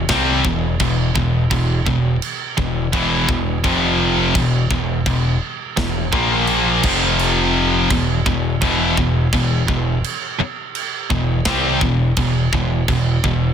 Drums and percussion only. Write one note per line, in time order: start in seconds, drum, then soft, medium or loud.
0.09 kick loud
0.09 snare loud
0.09 crash medium
0.45 kick loud
0.80 kick medium
0.80 crash medium
1.16 kick medium
1.51 kick medium
1.51 crash medium
1.86 kick medium
2.22 crash medium
2.58 kick medium
2.93 kick loud
2.93 crash medium
3.29 kick loud
3.64 kick loud
3.64 crash medium
4.35 kick medium
4.35 crash medium
4.71 kick medium
5.06 kick loud
5.06 crash medium
5.77 kick loud
5.77 snare loud
5.77 crash medium
6.13 kick loud
6.47 crash medium
6.83 kick loud
6.83 crash loud
7.19 crash medium
7.90 kick loud
7.90 crash medium
8.26 kick medium
8.62 kick loud
8.62 crash medium
8.97 kick loud
9.33 kick loud
9.33 crash medium
9.68 kick medium
10.04 crash medium
10.75 crash medium
11.10 kick medium
11.45 kick loud
11.45 snare loud
11.45 crash medium
11.81 kick medium
12.17 kick loud
12.17 crash medium
12.53 kick medium
12.88 kick medium
12.88 crash medium
13.24 kick medium